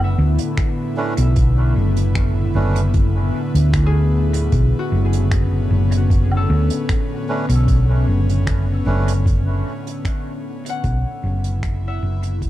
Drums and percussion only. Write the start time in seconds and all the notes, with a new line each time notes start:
0.39 closed hi-hat
0.58 finger snap, kick, closed hi-hat
1.17 closed hi-hat
1.36 kick, closed hi-hat
1.97 closed hi-hat
2.15 finger snap, kick, closed hi-hat
2.76 closed hi-hat
2.94 kick, closed hi-hat
3.55 closed hi-hat
3.73 finger snap, kick, closed hi-hat
4.34 closed hi-hat
4.52 kick, closed hi-hat
5.13 closed hi-hat
5.31 finger snap, kick, closed hi-hat
5.92 closed hi-hat
6.10 kick, closed hi-hat
6.31 low woodblock
6.70 closed hi-hat
6.89 finger snap, kick, closed hi-hat
7.49 closed hi-hat
7.68 kick, closed hi-hat
8.29 closed hi-hat
8.47 finger snap, kick, closed hi-hat
9.08 closed hi-hat
9.26 kick, closed hi-hat
9.87 closed hi-hat
10.05 finger snap, kick, closed hi-hat
10.66 closed hi-hat
10.84 kick, closed hi-hat
11.44 closed hi-hat
11.63 finger snap, kick, closed hi-hat
12.23 closed hi-hat
12.42 kick, closed hi-hat